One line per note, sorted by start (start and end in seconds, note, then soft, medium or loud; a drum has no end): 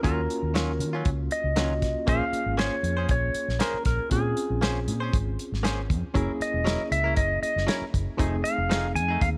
0.02 0.26 D#2 medium
0.02 0.20 D#3 medium
0.02 0.20 F#3 medium
0.02 1.53 A#3 medium
0.02 1.53 C#4 medium
0.02 0.20 C#4 medium
0.02 1.54 F4 medium
0.02 0.21 F4 medium
0.02 1.54 F#4 medium
0.02 1.02 A#4 medium
0.02 kick loud
0.02 closed hi-hat medium
0.30 closed hi-hat medium
0.43 0.81 D#2 medium
0.54 0.71 D#3 medium
0.54 0.71 F#3 medium
0.54 0.71 C#4 medium
0.54 0.72 F4 medium
0.54 snare loud
0.54 closed hi-hat medium
0.79 1.02 D#3 medium
0.79 closed hi-hat medium
0.93 1.10 F#3 medium
0.93 1.09 C#4 medium
0.93 1.08 F4 medium
1.05 1.27 C#2 medium
1.05 kick loud
1.05 closed hi-hat medium
1.31 2.10 D#5 medium
1.31 closed hi-hat medium
1.44 1.82 C#2 medium
1.56 1.73 D#3 medium
1.56 1.73 F#3 medium
1.56 2.05 A#3 soft
1.56 2.06 C#4 soft
1.56 1.73 C#4 medium
1.56 2.07 F4 soft
1.56 1.73 F4 medium
1.56 2.08 F#4 medium
1.56 snare loud
1.56 closed hi-hat medium
1.82 1.94 C2 medium
1.82 kick medium
1.82 snare soft
1.82 closed hi-hat medium
2.06 2.19 A#1 loud
2.06 4.06 A#3 medium
2.06 2.23 A#3 medium
2.06 4.07 C#4 medium
2.06 2.24 C#4 medium
2.06 4.07 F4 medium
2.06 2.24 G#4 medium
2.06 4.08 G#4 medium
2.06 2.24 C5 medium
2.06 2.61 F5 loud
2.06 kick loud
2.06 closed hi-hat medium
2.32 muted fingered electric bass stroke soft
2.32 closed hi-hat medium
2.46 2.68 G#1 medium
2.58 2.74 A#3 medium
2.58 2.74 C#4 medium
2.58 2.75 G#4 medium
2.58 2.75 C5 medium
2.58 3.06 C#5 loud
2.58 snare loud
2.58 closed hi-hat medium
2.83 3.05 F2 medium
2.83 closed hi-hat medium
2.97 3.13 C#4 soft
2.97 3.12 G#4 soft
2.97 3.12 C5 soft
3.09 3.31 A#1 medium
3.09 3.63 C#5 medium
3.09 kick loud
3.09 closed hi-hat medium
3.34 closed hi-hat medium
3.48 3.59 A#1 medium
3.48 snare soft
3.59 3.76 A#3 medium
3.59 3.77 C#4 medium
3.59 3.77 G#4 medium
3.59 3.84 A#4 medium
3.59 3.77 C5 medium
3.59 snare loud
3.59 closed hi-hat medium
3.74 muted fingered electric bass stroke soft
3.85 3.97 A#1 medium
3.85 4.12 A#4 medium
3.85 kick medium
3.85 snare soft
3.85 closed hi-hat medium
4.09 4.33 A#2 medium
4.09 6.10 C4 medium
4.09 6.11 C#4 medium
4.09 6.11 F4 medium
4.09 6.11 G#4 medium
4.09 5.10 G#4 medium
4.09 kick loud
4.09 closed hi-hat medium
4.37 closed hi-hat medium
4.50 4.89 A#1 medium
4.61 4.78 A#3 medium
4.61 4.78 C#4 medium
4.61 4.78 G#4 medium
4.61 4.79 C5 medium
4.61 snare loud
4.61 closed hi-hat medium
4.88 5.09 A#2 medium
4.88 closed hi-hat medium
5.00 5.17 C#4 soft
5.00 5.16 G#4 medium
5.00 5.15 C5 medium
5.13 5.35 G#1 medium
5.13 kick loud
5.13 closed hi-hat medium
5.39 closed hi-hat medium
5.52 5.92 G#1 medium
5.52 snare soft
5.63 5.80 A#3 medium
5.63 5.80 C#4 medium
5.63 5.80 G#4 medium
5.63 5.81 C5 medium
5.63 snare loud
5.63 closed hi-hat medium
5.90 6.02 F2 medium
5.90 kick medium
5.90 closed hi-hat medium
6.14 6.27 F#1 medium
6.14 6.31 F#3 medium
6.14 8.14 A#3 medium
6.14 8.15 C#4 medium
6.14 6.31 C#4 medium
6.14 8.15 E4 medium
6.14 6.32 E4 medium
6.14 8.15 G#4 medium
6.14 6.32 A#4 medium
6.14 kick loud
6.14 closed hi-hat medium
6.40 6.91 D#5 medium
6.40 muted fingered electric bass stroke soft
6.40 closed hi-hat medium
6.54 6.76 E1 medium
6.64 6.81 F#3 medium
6.64 6.82 C#4 medium
6.64 6.82 E4 medium
6.64 6.82 A#4 medium
6.64 snare loud
6.64 closed hi-hat medium
6.91 7.13 C#2 medium
6.91 7.17 E5 medium
6.91 closed hi-hat medium
7.04 7.21 C#4 soft
7.04 7.20 E4 soft
7.04 7.19 A#4 medium
7.16 7.39 F#1 medium
7.16 7.41 D#5 medium
7.16 kick loud
7.16 closed hi-hat medium
7.43 7.69 D#5 medium
7.43 closed hi-hat medium
7.56 7.66 F#1 medium
7.56 snare soft
7.67 7.83 F#3 medium
7.67 7.84 C#4 medium
7.67 7.84 E4 medium
7.67 7.84 A#4 medium
7.67 7.75 C#5 medium
7.67 snare loud
7.67 closed hi-hat medium
7.81 muted fingered electric bass stroke soft
7.94 8.05 F#1 medium
7.94 kick medium
7.94 closed hi-hat medium
8.17 8.41 F1 medium
8.17 8.35 F3 medium
8.17 9.38 A3 medium
8.17 8.35 A3 medium
8.17 9.38 C4 medium
8.17 9.38 D#4 medium
8.17 8.35 D#4 medium
8.17 9.38 G#4 medium
8.17 8.36 G#4 medium
8.17 kick loud
8.17 closed hi-hat medium
8.44 8.91 F5 medium
8.44 closed hi-hat medium
8.58 8.97 F1 medium
8.69 8.86 F3 medium
8.69 8.86 A3 medium
8.69 8.86 D#4 medium
8.69 8.87 G#4 medium
8.69 snare loud
8.69 closed hi-hat medium
8.95 9.17 F2 medium
8.95 9.22 G#5 loud
8.95 closed hi-hat medium
9.09 9.25 A3 soft
9.09 9.24 D#4 soft
9.09 9.23 G#4 soft
9.21 9.38 D#2 medium
9.21 9.29 F5 loud
9.21 kick loud
9.21 closed hi-hat medium